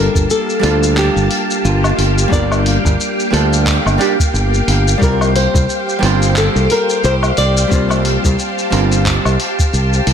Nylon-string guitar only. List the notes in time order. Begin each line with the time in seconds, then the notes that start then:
Already playing: A#4
0.31 A4
0.98 G4
1.65 F4
2.32 D5
5.03 A#4
5.36 C5
6.38 A4
6.72 A#4
7.05 C5
7.38 D5